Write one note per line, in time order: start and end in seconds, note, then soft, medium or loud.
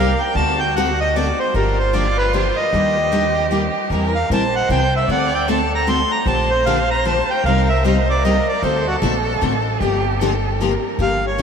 0.00 0.13 C2 medium
0.00 0.38 A#4 loud
0.00 0.21 F5 medium
0.20 0.35 G5 medium
0.35 1.30 D2 medium
0.35 0.58 D3 medium
0.35 0.58 A3 medium
0.35 0.58 C4 medium
0.35 1.40 F#4 medium
0.35 0.58 F#4 medium
0.35 0.59 A4 medium
0.35 0.59 A5 loud
0.59 0.75 G5 loud
0.76 0.87 D3 loud
0.76 0.88 A3 loud
0.76 0.88 C4 loud
0.76 0.88 F#4 loud
0.76 0.88 A4 loud
0.76 1.00 F#5 medium
1.01 1.15 D#5 loud
1.15 1.27 D3 medium
1.15 1.27 A3 medium
1.15 1.27 C4 loud
1.15 1.27 F#4 loud
1.15 1.27 A4 loud
1.15 1.39 D5 medium
1.39 1.54 C5 medium
1.54 2.49 G1 medium
1.54 1.75 D3 medium
1.54 1.76 F3 medium
1.54 1.76 A#3 medium
1.54 1.76 D4 medium
1.54 2.74 F4 medium
1.54 1.76 G4 medium
1.54 1.78 A#4 medium
1.79 1.94 C5 medium
1.93 2.05 D3 medium
1.93 2.05 F3 medium
1.93 2.05 A#3 medium
1.93 2.05 D4 medium
1.93 2.05 G4 loud
1.93 2.17 D5 medium
2.18 2.33 B4 medium
2.33 2.44 D3 medium
2.33 2.45 F3 medium
2.33 2.45 A#3 medium
2.33 2.45 D4 medium
2.33 2.45 G4 loud
2.33 2.57 C5 medium
2.56 3.47 D#5 medium
2.73 3.67 D#2 medium
2.73 2.94 D#3 medium
2.73 2.94 G3 medium
2.73 2.94 A#3 medium
2.73 2.94 D4 medium
2.73 3.93 G4 loud
2.73 2.95 G4 medium
3.12 3.23 D#3 medium
3.12 3.23 G3 medium
3.12 3.23 A#3 medium
3.12 3.23 D4 loud
3.12 3.23 G4 loud
3.51 3.62 D#3 medium
3.51 3.62 G3 medium
3.51 3.63 A#3 medium
3.51 3.63 D4 medium
3.51 3.63 G4 medium
3.90 4.22 E2 medium
3.90 4.12 E3 medium
3.90 4.12 G3 medium
3.90 4.12 C4 medium
3.90 4.12 E4 medium
3.90 4.32 A#4 loud
3.90 4.13 A#4 medium
4.15 4.30 F5 medium
4.30 4.64 A#1 medium
4.30 4.42 E3 medium
4.30 4.42 G3 medium
4.30 4.42 C4 loud
4.30 4.42 E4 loud
4.30 4.42 A#4 loud
4.30 5.07 C5 loud
4.30 4.55 A5 loud
4.55 4.70 F#5 loud
4.69 5.03 C2 medium
4.69 4.81 E3 medium
4.69 4.81 G3 medium
4.69 4.81 C4 medium
4.69 4.81 E4 medium
4.69 4.81 A#4 medium
4.69 4.94 G5 loud
4.96 5.10 E5 medium
5.08 6.03 D2 medium
5.08 5.30 D3 medium
5.08 5.30 A3 medium
5.08 5.30 C4 medium
5.08 5.30 F#4 medium
5.08 5.30 A4 medium
5.08 5.50 D5 loud
5.08 5.34 F#5 medium
5.34 5.48 G5 medium
5.48 5.59 D3 loud
5.48 5.59 A3 loud
5.48 5.59 C4 loud
5.48 5.60 F#4 loud
5.48 6.12 A4 loud
5.48 5.60 A4 loud
5.48 5.72 A5 medium
5.75 5.88 A#5 medium
5.87 5.98 D3 medium
5.87 5.98 A3 medium
5.87 5.98 C4 loud
5.87 5.99 F#4 loud
5.87 5.99 A4 medium
5.87 6.12 C6 loud
6.12 6.26 A#5 loud
6.26 7.20 A#1 medium
6.26 6.47 D3 medium
6.26 6.48 F3 medium
6.26 6.48 A#3 medium
6.26 6.48 D4 medium
6.26 6.48 G4 medium
6.26 7.40 C5 loud
6.26 6.51 A5 medium
6.50 6.65 C5 medium
6.66 6.77 D3 loud
6.66 6.77 F3 medium
6.66 6.78 A#3 loud
6.66 6.78 D4 loud
6.66 6.78 G4 loud
6.66 6.89 F5 medium
6.91 7.05 A#5 loud
7.05 7.16 D3 medium
7.05 7.16 F3 medium
7.05 7.16 A#3 medium
7.05 7.17 D4 medium
7.05 7.17 G4 medium
7.05 7.30 A5 medium
7.30 7.44 G5 medium
7.44 8.39 C2 medium
7.44 7.66 C3 medium
7.44 7.66 G3 medium
7.44 7.66 A#3 medium
7.44 7.67 D#4 medium
7.44 7.67 G4 medium
7.44 7.85 A#4 loud
7.44 7.68 F5 loud
7.69 7.84 E5 medium
7.83 7.95 C3 loud
7.83 7.95 G3 loud
7.83 7.96 A#3 loud
7.83 7.96 D#4 loud
7.83 7.96 G4 loud
7.83 8.24 C5 medium
7.83 8.08 D#5 medium
8.10 8.24 D5 loud
8.22 8.35 C3 medium
8.22 8.35 G3 medium
8.22 8.35 A#3 loud
8.22 8.35 D#4 loud
8.22 8.36 G4 loud
8.22 8.63 A#4 medium
8.22 8.47 D#5 loud
8.48 8.63 D5 medium
8.62 8.94 D2 medium
8.62 8.84 D3 medium
8.62 8.84 A3 medium
8.62 8.84 C4 medium
8.62 8.84 F#4 medium
8.62 9.82 A4 loud
8.62 8.84 A4 medium
8.62 8.86 C5 medium
8.87 8.96 F#4 medium
9.02 9.35 A#1 loud
9.02 9.13 D3 loud
9.02 9.13 A3 loud
9.02 9.13 C4 loud
9.02 9.13 F#4 loud
9.02 9.14 A4 loud
9.41 9.75 A1 medium
9.41 9.52 D3 loud
9.41 9.53 A3 loud
9.41 9.53 C4 medium
9.41 9.53 F#4 medium
9.41 9.53 A4 medium
9.80 10.75 G1 medium
9.80 10.02 D3 medium
9.80 10.02 F3 medium
9.80 10.02 A#3 medium
9.80 10.02 D4 medium
9.80 10.21 G4 loud
9.80 10.02 G4 medium
10.20 10.32 D3 loud
10.20 10.32 F3 medium
10.20 10.32 A#3 loud
10.20 10.32 D4 loud
10.20 10.32 G4 loud
10.20 10.60 A4 medium
10.59 10.71 D3 medium
10.59 10.71 F3 medium
10.59 10.72 A#3 loud
10.59 10.72 D4 loud
10.59 10.72 G4 loud
10.59 10.99 A#4 medium
10.99 11.42 G1 medium
10.99 11.20 D3 medium
10.99 11.20 F3 medium
10.99 11.20 A#3 medium
10.99 11.20 D4 medium
10.99 11.20 G4 medium
10.99 11.25 F5 medium
11.27 11.42 C#5 medium
11.38 11.42 D3 medium
11.38 11.42 F3 loud
11.38 11.42 A#3 medium